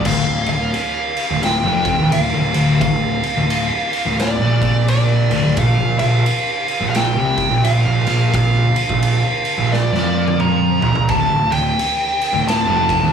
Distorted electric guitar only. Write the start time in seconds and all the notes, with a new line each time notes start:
0.05 D2
0.27 D2
0.48 D2
1.31 D2
1.64 F2
1.98 D#2
2.13 D2
2.34 D2
2.55 D2
2.81 D2
3.37 D2
4.06 D2
4.41 A#2
5.30 D2
5.44 D2
5.57 A#2
5.79 A#2
6.00 A#2
6.82 A#2
7.16 C3
7.51 A#2
7.65 A#2
7.87 A#2
8.08 A#2
8.33 A#2
8.90 A#2
9.59 A#2
9.93 F3
10.82 A#2
10.95 A#2
11.10 D2
11.30 D2
11.51 D2
12.34 D2
12.67 F2
13.03 D#2